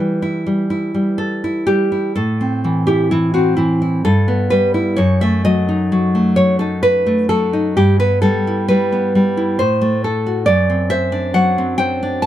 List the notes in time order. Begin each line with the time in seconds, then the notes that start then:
Already playing: E3 E4 B4
0.00 G3
0.22 E4
0.47 G3
0.70 E4
0.94 G3
1.18 A4
1.44 E4
1.67 G3 G4
1.92 E4
2.15 A2 A4
2.41 C4
2.64 E3
2.87 E4 G4
3.11 E3 E4
3.34 C4 F#4
3.57 E3 E4
3.82 E4
4.05 G2 A4
4.28 B3
4.50 G3 B4
4.74 E4
4.96 F#2 C#5
5.21 A3 E5
5.45 F#3 D#5
5.69 D#4
5.92 F#3
6.15 A3
6.36 F#3 C#5
6.59 D#4 A4
6.83 B4
7.06 A3
7.29 F#3 A4
7.53 D#4
7.77 G2 G4
8.00 B3 B4
8.22 G3 A4
8.47 E4
8.68 G3 B4
8.92 B3
9.15 G3
9.37 E4
9.59 A2 C5
9.81 A3
10.04 A4
10.26 F#4
10.46 F#2 D5
10.70 C4
10.90 C5 E5
11.12 D4
11.34 F#3 F#5
11.58 C4
11.78 C5 G5
12.03 D4
12.22 A5